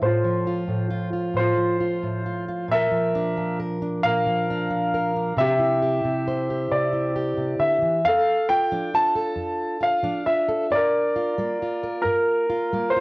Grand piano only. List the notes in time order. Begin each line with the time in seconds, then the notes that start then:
0.03 F4 C5
1.37 F4 C5
2.71 A#4 E5
4.03 A#4 F5
5.38 G4 E5
6.71 D5
7.60 E5
8.05 A4 F5
8.49 G5
8.95 A5
9.83 F5
10.26 E5
10.72 A#4 D5
12.02 A#4
12.90 C5